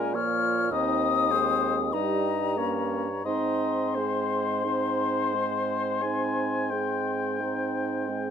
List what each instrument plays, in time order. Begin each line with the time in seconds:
Already playing: bassoon A#2, french horn G#3, clarinet C#4, oboe A#4, flute G#5
0.14 french horn F3, clarinet A#3, oboe C#5, flute F6
0.71 bassoon D#2, french horn C4, clarinet D#4, oboe D#5, flute D#6
1.31 french horn G#3, clarinet C4, oboe C5
1.93 bassoon G2, french horn G3, clarinet D#4, oboe D#5, flute A#5
2.57 french horn A#3, clarinet C#4, oboe C#5
3.25 bassoon G#2, french horn C4, clarinet D#4, oboe D#5, flute C6
3.95 french horn G#3, clarinet C4, oboe C5
4.65 french horn C4, clarinet D#4, oboe C5
5.34 french horn G#3, clarinet C4
6.02 french horn C4, clarinet D#4, oboe G#5
6.70 french horn G#3, clarinet C4, oboe G5
7.40 french horn C4, clarinet D#4
8.08 french horn G#3, clarinet C4